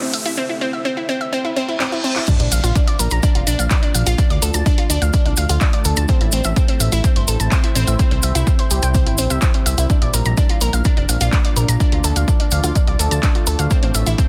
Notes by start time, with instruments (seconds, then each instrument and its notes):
Already playing: synth drone D3 A3, analog synth pad A3 G4 C5 E5, ambient pad C4 E4 A4 E5, riser
0.02 synth pluck C4
0.14 synth pluck E5, open hi-hat
0.26 synth pluck E4, closed hi-hat
0.37 synth pluck C4
0.49 synth pluck E4
0.61 synth pluck C4
0.73 synth pluck E5
0.85 synth pluck C4
0.97 synth pluck E4
1.09 synth pluck C4
1.21 synth pluck E5
1.33 synth pluck C4, reverse cymbal
1.45 synth pluck E4
1.56 synth pluck C4
1.68 synth pluck E4
1.80 synth pluck C4, clap
1.92 synth pluck E4
2.04 synth pluck C4
2.16 synth pluck E4, clap
2.28 ambient pad A#3 D4 F4 D5, synth pluck D4, kick, closed hi-hat, crash, impact, cabasa
2.40 analog synth bass A#1, synth pluck D4, closed hi-hat
2.52 analog synth bass A#1, synth pluck F5, open hi-hat, cabasa
2.64 analog synth bass A#1, synth pluck F4, closed hi-hat, cabasa
2.75 synth pluck D4, kick, closed hi-hat, cabasa
2.87 synth pluck D5, closed hi-hat
2.99 analog synth bass A#1, synth pluck A#4, open hi-hat, cabasa
3.11 analog synth bass A#1, synth pluck A#5, closed hi-hat, cabasa
3.23 synth pluck D4, kick, closed hi-hat, cabasa
3.35 analog synth bass F1, synth pluck F4, closed hi-hat
3.47 analog synth bass A#1, synth pluck D4, open hi-hat, cabasa
3.59 analog synth bass A#1, synth pluck F5, closed hi-hat, cabasa
3.71 synth pluck D4, kick, clap, closed hi-hat, cabasa
3.83 synth pluck D4, closed hi-hat
3.95 analog synth bass A#1, synth pluck F5, open hi-hat, cabasa
4.07 analog synth bass A#1, synth pluck F4, closed hi-hat, cabasa
4.18 ambient pad A3, synth pluck D4, kick, closed hi-hat, cabasa
4.30 analog synth bass D2, synth pluck D5, closed hi-hat
4.42 analog synth bass D2, synth pluck A4, open hi-hat, cabasa
4.54 analog synth bass D2, synth pluck A5, closed hi-hat, cabasa
4.66 synth pluck D4, kick, closed hi-hat, cabasa
4.78 synth pluck F4, closed hi-hat
4.90 analog synth bass D2, synth pluck D4, open hi-hat, cabasa
5.02 analog synth bass D2, synth pluck F5, closed hi-hat, cabasa
5.13 synth pluck D4, kick, closed hi-hat, cabasa
5.26 analog synth bass C2, synth pluck D4, closed hi-hat
5.37 analog synth bass D2, synth pluck F5, open hi-hat, cabasa
5.49 analog synth bass D2, synth pluck F4, closed hi-hat, cabasa
5.61 synth pluck D4, kick, clap, closed hi-hat, cabasa
5.73 synth pluck D5, closed hi-hat
5.85 analog synth bass D2, synth pluck A4, open hi-hat, cabasa
5.96 analog synth bass D2, synth pluck A5, closed hi-hat, cabasa
6.08 synth pluck C4, ambient pad C4 E4 C5, kick, closed hi-hat, cabasa
6.21 analog synth bass A1, synth pluck E4, closed hi-hat
6.32 analog synth bass A1, synth pluck C4, open hi-hat, cabasa
6.44 analog synth bass A1, synth pluck E5, closed hi-hat, cabasa
6.56 synth pluck C4, kick, closed hi-hat, cabasa
6.68 synth pluck C4, closed hi-hat
6.80 analog synth bass A1, synth pluck E5, open hi-hat, cabasa
6.92 analog synth bass A1, synth pluck E4, closed hi-hat, cabasa
7.04 synth pluck C4, kick, closed hi-hat, cabasa
7.16 analog synth bass G1, synth pluck C5, closed hi-hat
7.28 analog synth bass A1, synth pluck A4, open hi-hat, cabasa
7.40 analog synth bass A1, synth pluck A5, closed hi-hat, cabasa
7.52 synth pluck C4, kick, clap, closed hi-hat, cabasa
7.64 synth pluck E4, closed hi-hat
7.75 analog synth bass A1, synth pluck C4, open hi-hat, cabasa
7.87 analog synth bass A1, synth pluck E5, closed hi-hat, cabasa
7.99 ambient pad G3, synth pluck C4, kick, closed hi-hat, cabasa
8.11 analog synth bass C2, synth pluck C4, closed hi-hat
8.23 analog synth bass C2, synth pluck E5, open hi-hat, cabasa
8.35 analog synth bass C2, synth pluck E4, closed hi-hat, cabasa
8.47 synth pluck C4, kick, closed hi-hat, cabasa
8.59 synth pluck C5, closed hi-hat
8.71 analog synth bass C2, synth pluck G4, open hi-hat, cabasa
8.82 analog synth bass C2, synth pluck G5, closed hi-hat, cabasa
8.94 synth pluck C4, kick, closed hi-hat, cabasa
9.06 analog synth bass G1, synth pluck E4, closed hi-hat
9.18 analog synth bass A#1, synth pluck C4, open hi-hat, cabasa
9.30 analog synth bass C2, synth pluck E5, closed hi-hat, cabasa
9.42 synth pluck C4, kick, clap, closed hi-hat, cabasa
9.54 synth pluck C4, closed hi-hat
9.66 analog synth bass C2, synth pluck E5, open hi-hat, cabasa
9.78 analog synth bass C2, synth pluck E4, closed hi-hat, cabasa
9.90 ambient pad A#3 D4 F4 D5, synth pluck D4, kick, closed hi-hat, cabasa
10.02 analog synth bass A#1, synth pluck D5, closed hi-hat
10.14 analog synth bass A#1, synth pluck A#4, open hi-hat, cabasa
10.25 analog synth bass A#1, synth pluck A#5, closed hi-hat, cabasa
10.37 synth pluck D4, kick, closed hi-hat, cabasa
10.49 synth pluck F4, closed hi-hat
10.61 analog synth bass A#1, synth pluck A#4, open hi-hat, cabasa
10.73 analog synth bass A#1, synth pluck F5, closed hi-hat, cabasa
10.84 synth pluck D4, kick, closed hi-hat, cabasa
10.97 analog synth bass F1, synth pluck D4, closed hi-hat
11.09 analog synth bass A#1, synth pluck F5, open hi-hat, cabasa
11.21 analog synth bass A#1, synth pluck F4, closed hi-hat, cabasa
11.33 synth pluck D4, kick, clap, closed hi-hat, cabasa
11.45 synth pluck D5, closed hi-hat
11.56 analog synth bass A#1, synth pluck A#4, open hi-hat, cabasa
11.68 analog synth bass A#1, synth pluck A#5, closed hi-hat, cabasa
11.80 ambient pad A3, synth pluck D4, kick, closed hi-hat, cabasa
11.92 analog synth bass D2, synth pluck F4, closed hi-hat
12.04 analog synth bass D2, synth pluck A4, open hi-hat, cabasa
12.16 analog synth bass D2, synth pluck F5, closed hi-hat, cabasa
12.28 synth pluck D4, kick, closed hi-hat, cabasa
12.40 synth pluck D4, closed hi-hat
12.51 analog synth bass D2, synth pluck F5, open hi-hat, cabasa
12.64 analog synth bass D2, synth pluck F4, closed hi-hat, cabasa
12.75 synth pluck D4, kick, closed hi-hat, cabasa
12.87 analog synth bass C2, synth pluck D5, closed hi-hat
12.99 analog synth bass D2, synth pluck A4, open hi-hat, cabasa
13.11 analog synth bass D2, synth pluck A5, closed hi-hat, cabasa
13.23 synth pluck D4, kick, clap, closed hi-hat, cabasa
13.35 synth pluck F4, closed hi-hat
13.47 analog synth bass D2, synth pluck A4, open hi-hat, cabasa
13.59 analog synth bass D2, synth pluck F5, closed hi-hat, cabasa
13.71 ambient pad C4 E4 C5, synth pluck C4, kick, closed hi-hat, cabasa
13.83 analog synth bass A1, synth pluck C4, closed hi-hat
13.95 analog synth bass A1, synth pluck E5, open hi-hat, cabasa
14.07 analog synth bass A1, synth pluck E4, closed hi-hat, cabasa
14.18 synth pluck C4, kick, closed hi-hat, cabasa